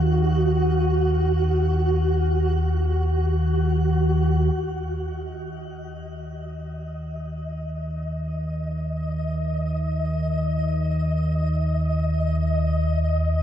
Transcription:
0, 0, Header, 1, 4, 480
1, 0, Start_track
1, 0, Key_signature, -6, "minor"
1, 0, Tempo, 500000
1, 12892, End_track
2, 0, Start_track
2, 0, Title_t, "Synth texture"
2, 0, Program_c, 0, 99
2, 0, Note_on_c, 0, 66, 73
2, 4346, Note_on_c, 0, 75, 76
2, 4396, Note_off_c, 0, 66, 0
2, 12892, Note_off_c, 0, 75, 0
2, 12892, End_track
3, 0, Start_track
3, 0, Title_t, "Ambient pad"
3, 0, Program_c, 1, 92
3, 0, Note_on_c, 1, 63, 66
3, 0, Note_on_c, 1, 66, 66
3, 0, Note_on_c, 1, 77, 80
3, 4366, Note_off_c, 1, 63, 0
3, 4390, Note_off_c, 1, 66, 0
3, 4431, Note_off_c, 1, 77, 0
3, 12892, End_track
4, 0, Start_track
4, 0, Title_t, "Synth drone"
4, 0, Program_c, 2, 95
4, 0, Note_on_c, 2, 39, 55
4, 0, Note_on_c, 2, 51, 56
4, 4363, Note_off_c, 2, 51, 0
4, 4366, Note_off_c, 2, 39, 0
4, 4374, Note_on_c, 2, 51, 66
4, 4378, Note_on_c, 2, 39, 66
4, 12892, Note_off_c, 2, 39, 0
4, 12892, Note_off_c, 2, 51, 0
4, 12892, End_track
0, 0, End_of_file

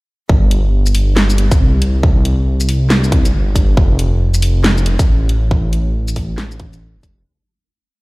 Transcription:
0, 0, Header, 1, 3, 480
1, 0, Start_track
1, 0, Tempo, 434783
1, 323, Time_signature, 4, 2, 24, 8
1, 8853, End_track
2, 0, Start_track
2, 0, Title_t, "Detuned saw bass"
2, 0, Program_c, 0, 39
2, 326, Note_on_c, 0, 31, 98
2, 1654, Note_off_c, 0, 31, 0
2, 1764, Note_on_c, 0, 36, 77
2, 3672, Note_off_c, 0, 36, 0
2, 3685, Note_on_c, 0, 31, 85
2, 4153, Note_off_c, 0, 31, 0
2, 4165, Note_on_c, 0, 29, 102
2, 5493, Note_off_c, 0, 29, 0
2, 5605, Note_on_c, 0, 33, 80
2, 7672, Note_on_c, 0, 29, 83
2, 7688, Note_off_c, 0, 33, 0
2, 7992, Note_off_c, 0, 29, 0
2, 8853, End_track
3, 0, Start_track
3, 0, Title_t, "Drums"
3, 325, Note_on_c, 9, 36, 121
3, 436, Note_off_c, 9, 36, 0
3, 565, Note_on_c, 9, 42, 84
3, 675, Note_off_c, 9, 42, 0
3, 951, Note_on_c, 9, 82, 76
3, 1045, Note_on_c, 9, 46, 86
3, 1062, Note_off_c, 9, 82, 0
3, 1155, Note_off_c, 9, 46, 0
3, 1286, Note_on_c, 9, 38, 121
3, 1286, Note_on_c, 9, 39, 97
3, 1397, Note_off_c, 9, 38, 0
3, 1397, Note_off_c, 9, 39, 0
3, 1433, Note_on_c, 9, 82, 64
3, 1526, Note_on_c, 9, 42, 77
3, 1543, Note_off_c, 9, 82, 0
3, 1636, Note_off_c, 9, 42, 0
3, 1672, Note_on_c, 9, 42, 39
3, 1672, Note_on_c, 9, 82, 61
3, 1673, Note_on_c, 9, 36, 103
3, 1782, Note_off_c, 9, 42, 0
3, 1782, Note_off_c, 9, 82, 0
3, 1783, Note_off_c, 9, 36, 0
3, 2007, Note_on_c, 9, 42, 82
3, 2117, Note_off_c, 9, 42, 0
3, 2246, Note_on_c, 9, 36, 124
3, 2356, Note_off_c, 9, 36, 0
3, 2486, Note_on_c, 9, 42, 81
3, 2596, Note_off_c, 9, 42, 0
3, 2874, Note_on_c, 9, 82, 75
3, 2966, Note_on_c, 9, 46, 85
3, 2984, Note_off_c, 9, 82, 0
3, 3077, Note_off_c, 9, 46, 0
3, 3204, Note_on_c, 9, 38, 124
3, 3204, Note_on_c, 9, 39, 96
3, 3314, Note_off_c, 9, 38, 0
3, 3314, Note_off_c, 9, 39, 0
3, 3354, Note_on_c, 9, 82, 63
3, 3445, Note_on_c, 9, 36, 107
3, 3446, Note_on_c, 9, 42, 75
3, 3464, Note_off_c, 9, 82, 0
3, 3556, Note_off_c, 9, 36, 0
3, 3557, Note_off_c, 9, 42, 0
3, 3592, Note_on_c, 9, 42, 39
3, 3592, Note_on_c, 9, 82, 59
3, 3702, Note_off_c, 9, 42, 0
3, 3702, Note_off_c, 9, 82, 0
3, 3925, Note_on_c, 9, 36, 62
3, 3927, Note_on_c, 9, 42, 80
3, 3927, Note_on_c, 9, 82, 57
3, 4035, Note_off_c, 9, 36, 0
3, 4037, Note_off_c, 9, 42, 0
3, 4037, Note_off_c, 9, 82, 0
3, 4165, Note_on_c, 9, 36, 127
3, 4275, Note_off_c, 9, 36, 0
3, 4405, Note_on_c, 9, 42, 78
3, 4515, Note_off_c, 9, 42, 0
3, 4791, Note_on_c, 9, 82, 78
3, 4884, Note_on_c, 9, 46, 85
3, 4902, Note_off_c, 9, 82, 0
3, 4994, Note_off_c, 9, 46, 0
3, 5125, Note_on_c, 9, 38, 127
3, 5125, Note_on_c, 9, 39, 97
3, 5235, Note_off_c, 9, 38, 0
3, 5235, Note_off_c, 9, 39, 0
3, 5273, Note_on_c, 9, 82, 65
3, 5366, Note_on_c, 9, 42, 77
3, 5384, Note_off_c, 9, 82, 0
3, 5476, Note_off_c, 9, 42, 0
3, 5512, Note_on_c, 9, 36, 112
3, 5512, Note_on_c, 9, 42, 38
3, 5512, Note_on_c, 9, 82, 62
3, 5623, Note_off_c, 9, 36, 0
3, 5623, Note_off_c, 9, 42, 0
3, 5623, Note_off_c, 9, 82, 0
3, 5843, Note_on_c, 9, 42, 75
3, 5953, Note_off_c, 9, 42, 0
3, 6084, Note_on_c, 9, 36, 125
3, 6195, Note_off_c, 9, 36, 0
3, 6324, Note_on_c, 9, 42, 76
3, 6434, Note_off_c, 9, 42, 0
3, 6711, Note_on_c, 9, 82, 83
3, 6802, Note_on_c, 9, 46, 83
3, 6804, Note_on_c, 9, 36, 66
3, 6821, Note_off_c, 9, 82, 0
3, 6913, Note_off_c, 9, 46, 0
3, 6915, Note_off_c, 9, 36, 0
3, 7042, Note_on_c, 9, 38, 126
3, 7042, Note_on_c, 9, 39, 93
3, 7153, Note_off_c, 9, 38, 0
3, 7153, Note_off_c, 9, 39, 0
3, 7191, Note_on_c, 9, 82, 65
3, 7282, Note_on_c, 9, 42, 75
3, 7284, Note_on_c, 9, 36, 106
3, 7301, Note_off_c, 9, 82, 0
3, 7392, Note_off_c, 9, 42, 0
3, 7394, Note_off_c, 9, 36, 0
3, 7432, Note_on_c, 9, 42, 36
3, 7432, Note_on_c, 9, 82, 65
3, 7542, Note_off_c, 9, 42, 0
3, 7542, Note_off_c, 9, 82, 0
3, 7764, Note_on_c, 9, 36, 63
3, 7766, Note_on_c, 9, 42, 75
3, 7766, Note_on_c, 9, 82, 59
3, 7874, Note_off_c, 9, 36, 0
3, 7876, Note_off_c, 9, 42, 0
3, 7876, Note_off_c, 9, 82, 0
3, 8853, End_track
0, 0, End_of_file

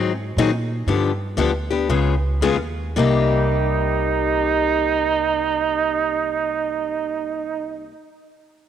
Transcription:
0, 0, Header, 1, 4, 480
1, 0, Start_track
1, 0, Key_signature, -3, "minor"
1, 0, Tempo, 496689
1, 838, Time_signature, 4, 2, 24, 8
1, 1326, Tempo, 525394
1, 2286, Tempo, 559180
1, 7664, End_track
2, 0, Start_track
2, 0, Title_t, "Soprano saxophone"
2, 0, Program_c, 0, 64
2, 2753, Note_on_c, 0, 63, 60
2, 6961, Note_off_c, 0, 63, 0
2, 7664, End_track
3, 0, Start_track
3, 0, Title_t, "Steel-string acoustic guitar"
3, 0, Program_c, 1, 25
3, 0, Note_on_c, 1, 51, 69
3, 0, Note_on_c, 1, 54, 73
3, 0, Note_on_c, 1, 60, 67
3, 0, Note_on_c, 1, 63, 72
3, 0, Note_on_c, 1, 68, 72
3, 104, Note_off_c, 1, 51, 0
3, 107, Note_off_c, 1, 54, 0
3, 107, Note_off_c, 1, 60, 0
3, 110, Note_off_c, 1, 63, 0
3, 111, Note_off_c, 1, 68, 0
3, 369, Note_on_c, 1, 54, 107
3, 371, Note_on_c, 1, 51, 90
3, 372, Note_on_c, 1, 60, 94
3, 376, Note_on_c, 1, 63, 106
3, 377, Note_on_c, 1, 68, 97
3, 479, Note_off_c, 1, 54, 0
3, 480, Note_off_c, 1, 51, 0
3, 481, Note_off_c, 1, 60, 0
3, 483, Note_off_c, 1, 63, 0
3, 483, Note_off_c, 1, 68, 0
3, 847, Note_on_c, 1, 50, 60
3, 850, Note_on_c, 1, 62, 67
3, 851, Note_on_c, 1, 53, 57
3, 851, Note_on_c, 1, 59, 62
3, 858, Note_on_c, 1, 67, 70
3, 1064, Note_off_c, 1, 50, 0
3, 1066, Note_off_c, 1, 62, 0
3, 1067, Note_off_c, 1, 53, 0
3, 1067, Note_off_c, 1, 59, 0
3, 1070, Note_off_c, 1, 67, 0
3, 1323, Note_on_c, 1, 50, 77
3, 1330, Note_on_c, 1, 53, 87
3, 1336, Note_on_c, 1, 59, 83
3, 1336, Note_on_c, 1, 67, 97
3, 1337, Note_on_c, 1, 62, 91
3, 1438, Note_off_c, 1, 50, 0
3, 1442, Note_off_c, 1, 53, 0
3, 1445, Note_off_c, 1, 59, 0
3, 1445, Note_off_c, 1, 62, 0
3, 1445, Note_off_c, 1, 67, 0
3, 1630, Note_on_c, 1, 67, 60
3, 1640, Note_on_c, 1, 62, 56
3, 1645, Note_on_c, 1, 59, 50
3, 1793, Note_off_c, 1, 67, 0
3, 1794, Note_off_c, 1, 59, 0
3, 1799, Note_off_c, 1, 62, 0
3, 1804, Note_on_c, 1, 49, 76
3, 1804, Note_on_c, 1, 65, 77
3, 1805, Note_on_c, 1, 56, 68
3, 1805, Note_on_c, 1, 59, 74
3, 1810, Note_on_c, 1, 68, 81
3, 2023, Note_off_c, 1, 49, 0
3, 2023, Note_off_c, 1, 56, 0
3, 2023, Note_off_c, 1, 65, 0
3, 2024, Note_off_c, 1, 59, 0
3, 2026, Note_off_c, 1, 68, 0
3, 2285, Note_on_c, 1, 49, 99
3, 2290, Note_on_c, 1, 56, 98
3, 2291, Note_on_c, 1, 68, 95
3, 2293, Note_on_c, 1, 59, 84
3, 2295, Note_on_c, 1, 65, 93
3, 2399, Note_off_c, 1, 49, 0
3, 2401, Note_off_c, 1, 56, 0
3, 2402, Note_off_c, 1, 68, 0
3, 2403, Note_off_c, 1, 59, 0
3, 2404, Note_off_c, 1, 65, 0
3, 2749, Note_on_c, 1, 48, 78
3, 2757, Note_on_c, 1, 55, 77
3, 2762, Note_on_c, 1, 58, 83
3, 2764, Note_on_c, 1, 63, 75
3, 2774, Note_on_c, 1, 67, 92
3, 6991, Note_off_c, 1, 48, 0
3, 6999, Note_off_c, 1, 55, 0
3, 7004, Note_off_c, 1, 58, 0
3, 7006, Note_off_c, 1, 63, 0
3, 7016, Note_off_c, 1, 67, 0
3, 7664, End_track
4, 0, Start_track
4, 0, Title_t, "Upright bass"
4, 0, Program_c, 2, 32
4, 0, Note_on_c, 2, 44, 89
4, 342, Note_off_c, 2, 44, 0
4, 353, Note_on_c, 2, 46, 84
4, 820, Note_off_c, 2, 46, 0
4, 836, Note_on_c, 2, 43, 82
4, 1311, Note_off_c, 2, 43, 0
4, 1319, Note_on_c, 2, 38, 79
4, 1782, Note_off_c, 2, 38, 0
4, 1798, Note_on_c, 2, 37, 80
4, 2268, Note_off_c, 2, 37, 0
4, 2273, Note_on_c, 2, 39, 90
4, 2738, Note_off_c, 2, 39, 0
4, 2751, Note_on_c, 2, 36, 83
4, 6959, Note_off_c, 2, 36, 0
4, 7664, End_track
0, 0, End_of_file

